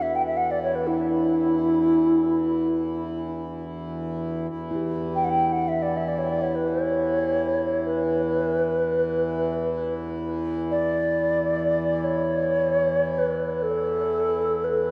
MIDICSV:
0, 0, Header, 1, 4, 480
1, 0, Start_track
1, 0, Tempo, 500000
1, 14314, End_track
2, 0, Start_track
2, 0, Title_t, "Alto flute"
2, 0, Program_c, 0, 73
2, 20, Note_on_c, 0, 76, 78
2, 146, Note_on_c, 0, 79, 85
2, 160, Note_off_c, 0, 76, 0
2, 245, Note_off_c, 0, 79, 0
2, 251, Note_on_c, 0, 76, 79
2, 355, Note_on_c, 0, 78, 85
2, 369, Note_off_c, 0, 76, 0
2, 490, Note_on_c, 0, 74, 80
2, 504, Note_off_c, 0, 78, 0
2, 591, Note_off_c, 0, 74, 0
2, 606, Note_on_c, 0, 73, 74
2, 722, Note_on_c, 0, 71, 75
2, 736, Note_off_c, 0, 73, 0
2, 837, Note_on_c, 0, 64, 81
2, 851, Note_off_c, 0, 71, 0
2, 3170, Note_off_c, 0, 64, 0
2, 4947, Note_on_c, 0, 79, 78
2, 5033, Note_on_c, 0, 78, 63
2, 5047, Note_off_c, 0, 79, 0
2, 5089, Note_on_c, 0, 79, 76
2, 5103, Note_off_c, 0, 78, 0
2, 5273, Note_off_c, 0, 79, 0
2, 5273, Note_on_c, 0, 79, 53
2, 5294, Note_on_c, 0, 78, 69
2, 5309, Note_off_c, 0, 79, 0
2, 5454, Note_on_c, 0, 76, 78
2, 5469, Note_off_c, 0, 78, 0
2, 5591, Note_on_c, 0, 74, 78
2, 5605, Note_off_c, 0, 76, 0
2, 5731, Note_on_c, 0, 76, 75
2, 5746, Note_off_c, 0, 74, 0
2, 5840, Note_on_c, 0, 74, 67
2, 5854, Note_off_c, 0, 76, 0
2, 5935, Note_on_c, 0, 73, 62
2, 5949, Note_off_c, 0, 74, 0
2, 6045, Note_on_c, 0, 74, 69
2, 6060, Note_off_c, 0, 73, 0
2, 6159, Note_on_c, 0, 73, 63
2, 6174, Note_off_c, 0, 74, 0
2, 6290, Note_on_c, 0, 71, 70
2, 6304, Note_off_c, 0, 73, 0
2, 6418, Note_on_c, 0, 73, 76
2, 6433, Note_off_c, 0, 71, 0
2, 7551, Note_on_c, 0, 71, 71
2, 7565, Note_off_c, 0, 73, 0
2, 9549, Note_off_c, 0, 71, 0
2, 10283, Note_on_c, 0, 74, 74
2, 11559, Note_on_c, 0, 73, 87
2, 11574, Note_off_c, 0, 74, 0
2, 12655, Note_on_c, 0, 71, 68
2, 12670, Note_off_c, 0, 73, 0
2, 13002, Note_off_c, 0, 71, 0
2, 13002, Note_on_c, 0, 71, 55
2, 13080, Note_on_c, 0, 69, 81
2, 13095, Note_off_c, 0, 71, 0
2, 14055, Note_on_c, 0, 71, 69
2, 14070, Note_off_c, 0, 69, 0
2, 14314, Note_off_c, 0, 71, 0
2, 14314, End_track
3, 0, Start_track
3, 0, Title_t, "Singing bowl"
3, 0, Program_c, 1, 14
3, 0, Note_on_c, 1, 62, 59
3, 0, Note_on_c, 1, 66, 54
3, 0, Note_on_c, 1, 69, 45
3, 0, Note_on_c, 1, 71, 45
3, 2642, Note_off_c, 1, 62, 0
3, 4129, Note_off_c, 1, 66, 0
3, 4156, Note_off_c, 1, 69, 0
3, 4179, Note_off_c, 1, 71, 0
3, 4523, Note_on_c, 1, 64, 51
3, 4561, Note_on_c, 1, 67, 39
3, 12029, Note_off_c, 1, 64, 0
3, 12048, Note_off_c, 1, 67, 0
3, 14314, End_track
4, 0, Start_track
4, 0, Title_t, "Harmonium"
4, 0, Program_c, 2, 20
4, 0, Note_on_c, 2, 40, 57
4, 0, Note_on_c, 2, 52, 56
4, 4290, Note_off_c, 2, 52, 0
4, 4297, Note_off_c, 2, 40, 0
4, 4304, Note_on_c, 2, 52, 61
4, 4312, Note_on_c, 2, 40, 60
4, 14314, Note_off_c, 2, 40, 0
4, 14314, Note_off_c, 2, 52, 0
4, 14314, End_track
0, 0, End_of_file